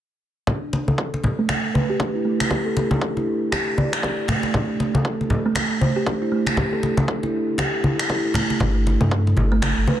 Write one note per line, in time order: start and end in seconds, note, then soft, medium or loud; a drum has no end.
0.47 0.61 D4 medium
0.47 kick loud
0.47 high conga medium
0.47 low conga medium
0.73 muted conga medium
0.88 0.93 A4 medium
0.88 high conga medium
0.98 kick loud
1.14 muted conga soft
1.24 high conga medium
1.24 low conga medium
1.39 1.44 A3 medium
1.49 finger snap medium
1.49 kick loud
1.49 muted conga medium
1.49 high conga medium
1.74 1.88 B4 medium
1.74 high conga medium
1.90 1.95 G4 medium
2.00 2.13 D4 medium
2.00 kick loud
2.00 muted conga soft
2.15 2.20 E4 medium
2.25 2.33 A3 medium
2.40 finger snap medium
2.40 muted conga soft
2.51 2.59 G4 medium
2.51 kick loud
2.51 high conga medium
2.66 2.71 A4 medium
2.77 muted conga medium
2.91 3.00 D4 medium
2.91 high conga loud
3.01 3.15 D4 medium
3.01 kick loud
3.16 3.22 E4 medium
3.16 muted conga soft
3.52 3.60 G4 loud
3.52 finger snap medium
3.52 kick loud
3.52 muted conga soft
3.52 high conga medium
3.78 3.92 D5 medium
3.78 high conga medium
3.93 finger snap medium
3.93 kick medium
4.03 kick loud
4.03 muted conga soft
4.28 4.42 A3 medium
4.28 finger snap medium
4.28 high conga medium
4.28 low conga medium
4.43 muted conga soft
4.54 4.68 D4 medium
4.54 kick loud
4.54 high conga medium
4.54 low conga medium
4.80 muted conga soft
4.95 5.00 A4 medium
4.95 high conga loud
5.05 kick loud
5.21 muted conga soft
5.30 high conga medium
5.30 low conga medium
5.46 5.51 A3 medium
5.55 finger snap medium
5.55 kick loud
5.55 muted conga soft
5.55 high conga medium
5.81 5.95 C5 medium
5.81 high conga medium
5.96 6.02 G4 medium
6.07 6.20 D4 medium
6.07 kick loud
6.07 muted conga soft
6.22 6.27 E4 medium
6.32 6.40 A3 medium
6.46 finger snap medium
6.46 muted conga medium
6.57 6.66 G4 medium
6.57 kick loud
6.57 high conga medium
6.57 low conga medium
6.73 6.78 A4 medium
6.83 muted conga soft
6.97 7.07 D4 medium
6.97 high conga loud
7.08 7.22 D4 medium
7.08 kick loud
7.23 7.29 E4 medium
7.23 muted conga soft
7.58 7.67 G4 loud
7.58 finger snap medium
7.58 kick loud
7.58 muted conga soft
7.58 high conga medium
7.84 7.93 E4 medium
7.84 high conga medium
7.99 finger snap medium
7.99 kick medium
8.09 8.24 E4 medium
8.09 kick loud
8.09 muted conga soft
8.25 8.34 E4 medium
8.34 8.50 A3 loud
8.34 finger snap medium
8.34 high conga medium
8.34 low conga medium
8.50 muted conga soft
8.60 8.97 G1 medium
8.60 8.74 D4 medium
8.60 kick loud
8.60 high conga medium
8.60 low conga medium
8.87 muted conga soft
9.01 9.34 G2 medium
9.01 9.07 A4 medium
9.01 high conga loud
9.11 kick loud
9.27 muted conga soft
9.37 9.74 G1 loud
9.37 high conga medium
9.37 low conga medium
9.52 9.58 A3 medium
9.62 finger snap medium
9.62 kick loud
9.62 muted conga medium
9.62 high conga medium
9.77 9.86 G1 medium
9.87 10.00 B4 medium
9.87 high conga medium